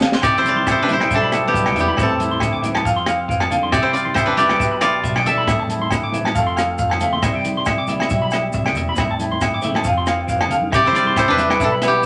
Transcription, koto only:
Already playing: C4 D4 E4 A4
0.23 G4 D5
0.38 E4 C5
0.48 F4 D5
0.71 E4 C5
0.82 D4 B4
0.91 E4 C5
1.14 D4 A4
1.48 B3 G4
1.80 B3 G4
2.01 C4 A4
3.72 G4 D5
3.82 E4 C5
3.93 F4 D5
4.14 E4 C5
4.26 D4 B4
4.37 G4 D5
4.81 F4 D5
5.26 A4 E5
10.74 G4 D5
10.86 E4 C5
10.95 F4 D5
11.17 E4 C5
11.28 D4 B4
11.61 D4 A4
11.84 B3 G4

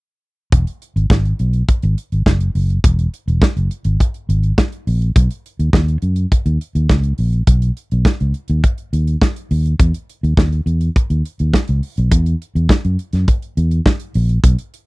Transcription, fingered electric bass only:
0.52 E1
0.96 G#1
1.10 G#1
1.40 B1
1.83 G#1
2.12 G#1
2.26 F#1
2.55 F#1
2.84 E1
3.28 E1
3.57 F#1
3.85 G#1
4.29 G#1
4.87 A#1
5.16 B1
5.59 D#2
5.73 D#2
6.03 F#2
6.46 D#2
6.75 D#2
6.90 C#2
7.19 A#1
7.47 B1
7.92 B1
8.21 C#2
8.50 D#2
8.93 D#2
9.51 D#2
9.80 E2
10.23 D#2
10.37 D#2
10.66 E2
11.10 D#2
11.40 D#2
11.69 C#2
11.98 B1
12.11 E2
12.55 E2
12.85 F#2
13.13 F#2
13.57 E2
14.15 A#1
14.44 B1

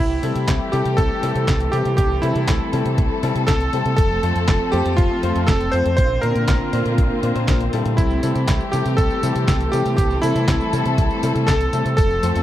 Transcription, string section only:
0.00 E3 A3 C4 G4
1.98 A4
3.98 F3
5.98 D3 A#3 F4
7.98 E3 A3 G4
9.98 A4
11.98 F3 C4 A4

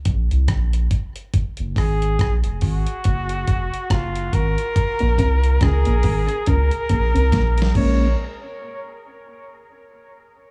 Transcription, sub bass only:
0.06 A#1
0.31 C2
0.49 A#1
1.59 F#1
1.77 G#1
2.20 A#1
2.45 F1
2.63 G#1
3.06 F#1
3.48 F1
3.91 F#1
4.34 G#1
5.02 A#1
5.19 C2
5.62 C#2
5.87 A#1
6.05 G#1
6.48 C#2
6.91 A#1
7.15 C2
7.33 A#1
7.76 A#1

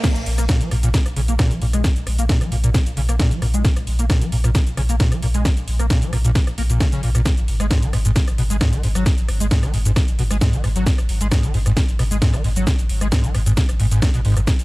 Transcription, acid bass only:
0.04 A#2
0.38 A#3
0.49 A#2
0.61 F3
0.71 A#2
0.83 A#2
0.94 B2
1.17 C#3
1.28 A#3
1.39 A#2
1.51 F3
1.62 A#2
1.74 G#3
1.84 A#2
2.19 A#3
2.29 A#2
2.41 F3
2.52 A#2
2.64 A#2
2.74 B2
2.97 C#3
3.09 A#3
3.19 A#2
3.31 F3
3.42 A#2
3.54 G#3
3.65 A#2
3.99 A#3
4.10 A#2
4.22 F3
4.32 A#2
4.44 A#2
4.55 B2
4.77 C#3
4.89 A#3
5.00 A#2
5.12 F3
5.23 A#2
5.34 G#3
5.45 A#2
5.79 A#3
5.90 A#2
6.02 F3
6.13 A#2
6.25 A#2
6.35 B2
6.58 A#3
6.70 A#2
6.80 C#3
6.92 C#3
7.03 A#2
7.15 A#2
7.26 G#2
7.60 G#3
7.71 G#2
7.83 D#3
7.93 G#2
8.05 G#2
8.16 A#2
8.38 B2
8.50 G#3
8.61 G#2
8.73 D#3
8.83 G#2
8.95 F#3
9.06 G#2
9.40 G#3
9.51 G#2
9.63 D#3
9.74 G#2
9.86 G#2
9.96 A#2
10.19 B2
10.31 G#3
10.41 G#2
10.53 D#3
10.64 G#2
10.76 F#3
10.86 G#2
11.21 G#3
11.32 G#2
11.43 D#3
11.54 G#2
11.66 G#2
11.77 A#2
11.99 B2
12.11 G#3
12.22 G#2
12.34 D#3
12.44 G#2
12.56 F#3
12.67 G#2
13.01 G#3
13.12 G#2
13.24 D#3
13.35 G#2
13.46 G#2
13.57 A#2
13.80 G#2
13.91 G#2
14.02 F#2
14.14 B2
14.25 G#2
14.37 F#2
14.47 A#2

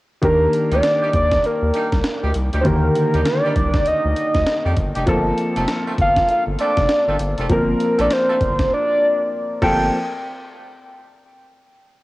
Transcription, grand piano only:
0.21 D#3 A#3 D4 G4
2.63 D3 D#3 A#3 G4
5.06 F3 A#3 C4 A4
7.49 F3 A#3 C4 A#4
9.62 F3 A#3 C4 A4

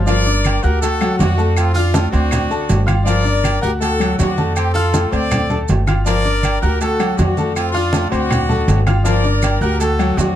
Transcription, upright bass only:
Already playing: G1
0.64 D2
1.20 F2
2.13 D2
2.70 G1
3.63 D2
4.20 F2
5.12 D2
5.69 G1
6.63 D2
7.19 F2
8.12 D2
8.68 G1
9.61 D2
10.17 F2

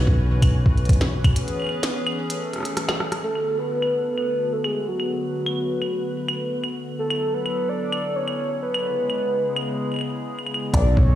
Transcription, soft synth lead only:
3.24 A4
3.59 B4
4.17 B4
4.53 A4
4.65 G#4
4.88 F#4
6.99 A4
7.34 B4
7.69 D5
8.16 C#5
8.63 B4
10.74 D5
10.97 C#5

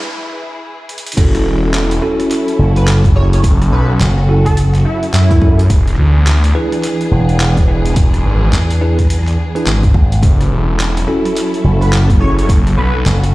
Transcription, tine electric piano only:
1.17 C#4 E4 F#4 A4
2.02 C#4 E4 F#4 A4
3.16 C#4 E4 F#4 G#4
4.29 C#4 E4 F#4 A4
5.41 C#4 E4 F#4 A4
6.55 D4 E4 G#4 B4
7.68 D4 E4 G#4 B4
8.81 D4 E4 G#4 B4
9.55 D4 E4 G#4 B4
11.08 C#4 E4 F#4 A4
12.21 C#4 E4 F#4 G#4

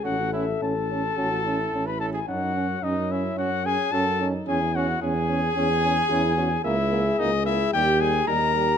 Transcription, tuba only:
0.04 A1
0.61 A1
1.17 A1
1.73 A1
2.28 F#2
2.83 F#2
3.37 F#2
3.92 F#2
4.47 E2
5.01 E2
5.55 E2
6.10 E2
6.64 C#2
7.19 C#2
7.73 D#2
8.27 D#2

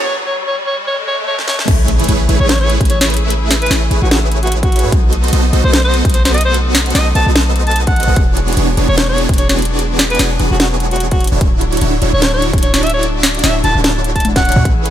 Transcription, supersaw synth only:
1.68 A3 E4 G#4 B4 C#5
2.08 A3 E4 G#4 B4 C#5
2.29 A3 E4 G#4 B4 C#5
2.40 A3 E4 G#4 B4 C#5
2.80 A3 E4 G#4 B4 E5
3.71 A3 E4 G#4 B4 C#5
3.91 A3 E4 G#4 B4 C#5
4.02 A3 E4 G#4 B4 C#5
4.83 A3 E4 G#4 B4 C#5
4.92 B3 F#4 A4 C5 D#5
5.33 B3 F#4 A4 C5 D#5
5.53 B3 F#4 A4 C5 D#5
5.64 B3 F#4 A4 C5 D#5
6.05 B3 F#4 A4 C5 F#5
6.95 B3 F#4 A4 C5 D#5
7.15 B3 F#4 A4 C5 D#5
7.26 B3 F#4 A4 C5 D#5
8.07 B3 F#4 A4 C5 D#5
8.16 E3 B3 D4 F#4 G#4 C#5
8.57 E3 B3 D4 F#4 G#4 C#5
8.77 E3 B3 D4 F#4 G#4 C#5
8.89 E3 B3 D4 F#4 G#4 C#5
9.29 E3 B3 D4 F#4 G#4 D5
10.19 E3 B3 D4 F#4 G#4 C#5
10.39 E3 B3 D4 F#4 G#4 B4
10.50 E3 B3 D4 F#4 G#4 C#5
11.32 D3 D4 E4 F#4 C#5
11.41 D3 D4 E4 F#4 C#5
11.81 D3 D4 E4 F#4 C#5
12.02 D3 D4 E4 F#4 C#5
12.13 D3 D4 E4 F#4 C#5
12.53 D3 D4 E4 F#4 D5
13.43 D3 D4 E4 F#4 C#5
13.64 D3 D4 E4 F#4 B4
13.75 D3 D4 E4 F#4 C#5
14.56 D3 D4 E4 F#4 C#5
14.65 A3 E4 G#4 B4 C#5

